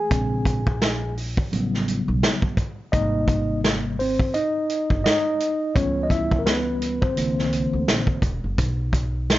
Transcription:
Already playing: G#4 G#5
0.10 A#1 C#3 G#3 C4, kick, closed hi-hat
0.45 kick, closed hi-hat
0.67 kick
0.82 snare, closed hi-hat
1.17 open hi-hat
1.37 kick
1.52 A1 C#3 F#3 G3 B3, closed hi-hat
1.74 snare
1.88 closed hi-hat
2.08 B1
2.23 snare, closed hi-hat
2.42 kick
2.57 kick, closed hi-hat
2.92 G#1 C3 G3 A#3 D#4 D#5, kick, closed hi-hat
3.28 kick, closed hi-hat
3.64 snare, closed hi-hat
3.99 C4 C5, open hi-hat
4.20 kick
4.34 D#4 D#5, closed hi-hat
4.70 closed hi-hat
4.90 G1, kick
5.04 D#4 D#5, snare, closed hi-hat
5.40 closed hi-hat
5.75 C#2 E3 G3 B3 C#4 C#5, kick, closed hi-hat
6.03 D#5
6.10 E4 E5, kick, closed hi-hat
6.31 kick
6.39 A#4
6.46 B3 B4, snare, closed hi-hat
6.82 closed hi-hat
7.02 C4 C5, kick
7.16 C2 D3 E3 A#3, closed hi-hat
7.39 snare
7.53 closed hi-hat
7.73 D2
7.88 A#1, snare, closed hi-hat
8.07 kick
8.22 E1, kick, closed hi-hat
8.44 F#1
8.58 B1, kick, closed hi-hat
8.93 kick, closed hi-hat
9.30 snare, closed hi-hat

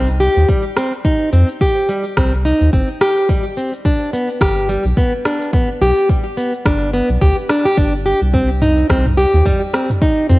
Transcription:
Already playing: C2
0.09 cabasa
0.20 G4, cabasa
0.36 D#2, cabasa
0.48 G3, kick, cabasa
0.77 C4, cross-stick, cabasa
0.93 cabasa
1.05 D#4, kick, cabasa
1.33 F2 C4, cabasa
1.49 cabasa
1.61 G4, kick, cabasa
1.89 G3, cabasa
2.05 cabasa
2.17 C2 C4, kick, cross-stick, cabasa
2.33 cabasa
2.45 D#4, cabasa
2.61 D#2, cabasa
2.73 G1 C4, kick, cabasa
3.01 G4, cross-stick, cabasa
3.17 cabasa
3.29 G3, kick, cabasa
3.57 C4, cabasa
3.73 cabasa
3.85 D4, kick, cabasa
4.13 B3, cabasa
4.30 cabasa
4.41 G1 G4, kick, cross-stick, cabasa
4.57 cabasa
4.69 G3, cabasa
4.85 B1, cabasa
4.97 B3, kick, cabasa
5.25 D4, cross-stick, cabasa
5.42 cabasa
5.53 B3, kick, cabasa
5.81 B1 G4, cabasa
5.98 cabasa
6.09 G3, kick, cabasa
6.37 B3, cabasa
6.54 cabasa
6.65 G1 D4, kick, cross-stick, cabasa
6.82 cabasa
6.93 B3, cabasa
7.09 B1, cabasa
7.21 D2 G4, kick, cabasa
7.49 D4, cross-stick, cabasa
7.65 G4, cabasa
7.78 G1 D4, kick, cabasa
8.06 G4, cabasa
8.21 C2, cabasa
8.34 C4, kick, cabasa
8.62 D#4, mid tom, cabasa
8.78 cabasa
8.90 C2 C4, kick, cross-stick, cabasa
9.06 mid tom, cabasa
9.17 G4, cabasa
9.34 D#2, cabasa
9.46 G3, kick, mid tom, cabasa
9.74 C4, cross-stick, cabasa
9.90 mid tom, cabasa
10.02 D#4, kick, cabasa
10.29 F2 C4, mid tom, cabasa

